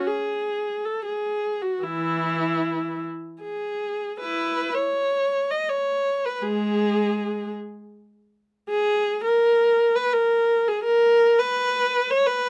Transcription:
0.07 0.85 G#4 medium
0.85 1.05 A4 medium
1.05 1.62 G#4 medium
1.62 1.83 F#4 soft
1.83 3.01 E3 soft
1.83 3.05 E4 medium
3.42 4.14 G#4 medium
4.20 4.71 E4 medium
4.20 4.74 B4 medium
4.74 5.50 C#5 medium
5.51 5.70 D#5 medium
5.69 6.26 C#5 medium
6.26 6.44 B4 medium
6.42 7.50 G#3 medium
6.42 7.54 G#4 medium
8.69 9.20 G#4 medium
9.24 9.93 A#4 medium
9.96 10.12 B4 medium
10.13 10.66 A#4 medium
10.68 10.85 G#4 medium
10.83 11.37 A#4 medium
11.39 12.10 B4 medium
12.10 12.28 C#5 medium
12.26 12.49 B4 medium

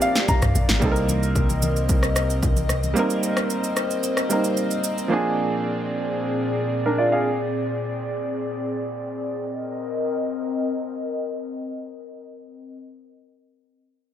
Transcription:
0.00 0.77 F3 medium
0.00 0.77 A#3 medium
0.00 0.78 C4 medium
0.00 0.79 D4 medium
0.00 0.79 G4 medium
0.00 0.80 G4 medium
0.00 0.78 D5 medium
0.00 0.27 F5 medium
0.00 shaker medium
0.16 snare medium
0.16 shaker medium
0.28 0.78 A#5 medium
0.28 kick loud
0.28 low conga medium
0.28 shaker medium
0.42 0.55 C2 loud
0.42 cross-stick medium
0.42 mid tom medium
0.42 high conga medium
0.42 shaker medium
0.55 0.69 A#1 loud
0.55 low conga medium
0.55 shaker loud
0.69 0.82 G#1 medium
0.69 snare medium
0.69 high conga medium
0.69 shaker soft
0.80 2.92 C2 medium
0.80 2.91 G3 medium
0.80 2.92 A#3 medium
0.80 2.92 C4 medium
0.80 9.35 C4 medium
0.80 2.94 A#4 medium
0.80 5.07 D#5 medium
0.80 kick loud
0.80 low conga medium
0.80 shaker medium
0.84 2.93 D#4 medium
0.84 0.90 A4 medium
0.91 2.97 A#4 medium
0.96 shaker medium
1.09 high conga medium
1.09 shaker loud
1.23 shaker soft
1.35 kick loud
1.35 low conga medium
1.35 shaker medium
1.49 high conga medium
1.49 shaker medium
1.62 high conga medium
1.62 shaker medium
1.76 shaker medium
1.89 kick loud
1.89 shaker medium
2.03 cross-stick medium
2.03 shaker medium
2.16 cross-stick medium
2.16 shaker medium
2.30 shaker medium
2.42 kick loud
2.42 low conga medium
2.42 shaker medium
2.56 high conga medium
2.56 shaker medium
2.69 cross-stick medium
2.69 low conga medium
2.69 shaker medium
2.83 high conga medium
2.83 shaker medium
2.94 4.26 G3 medium
2.94 4.27 A#3 medium
2.94 4.28 C4 medium
2.94 5.08 C5 medium
2.94 shaker medium
2.98 4.28 D#4 medium
2.98 4.29 A#4 medium
3.10 shaker medium
3.23 shaker loud
3.37 cross-stick loud
3.37 shaker soft
3.50 shaker medium
3.64 shaker medium
3.77 cross-stick medium
3.77 shaker medium
3.90 shaker medium
4.03 shaker medium
4.17 cross-stick medium
4.17 shaker medium
4.29 5.10 G3 medium
4.29 5.08 A#3 soft
4.29 5.09 C4 medium
4.29 5.11 D#4 medium
4.29 5.11 A#4 medium
4.29 shaker medium
4.44 shaker medium
4.57 shaker medium
4.71 shaker medium
4.84 shaker loud
4.98 shaker soft
5.08 9.35 A#2 medium
5.08 7.20 F3 medium
5.08 7.20 A#3 medium
5.08 7.21 C4 medium
5.08 6.69 D4 medium
5.08 9.35 G#4 medium
5.08 9.35 D5 medium
5.13 6.70 G#4 medium
6.86 6.98 D4 medium
6.86 6.98 A#4 medium
6.98 7.12 F4 medium
6.98 7.11 D5 medium
7.12 7.38 G#4 medium
7.12 7.38 F5 medium
9.39 12.77 C4 medium
9.39 12.77 A#4 medium
9.39 12.77 D#5 medium

